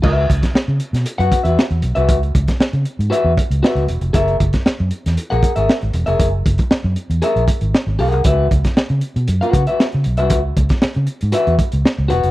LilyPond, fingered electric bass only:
\new Staff \with { instrumentName = "Fingered electric bass" } { \clef bass \time 4/4 \key cis \dorian \tempo 4 = 117 cis,8 cis,16 r8 cis16 r16 b,16 r16 fis,16 r16 e,16 r16 e,16 b,,16 bis,,16 | cis,8 cis,16 r8 cis16 r16 gis,16 r16 e,16 r16 cis,16 r16 cis,16 e,,16 eis,,16 | fis,,8 fis,,16 r8 fis,16 r16 e,16 r16 ais,,16 r16 gis,,16 r16 gis,,16 e,,16 eis,,16 | fis,,8 fis,,16 r8 fis,16 r16 e,16 r16 ais,,16 r16 gis,,16 r16 gis,,16 b,,16 bis,,16 |
cis,8 cis,16 r8 cis16 r16 b,16 fis,16 r16 cis16 r8 cis16 b,,16 bis,,16 | cis,8 cis,16 r8 cis16 r16 gis,16 r16 e,16 r16 cis,16 r16 cis,16 e,,16 eis,,16 | }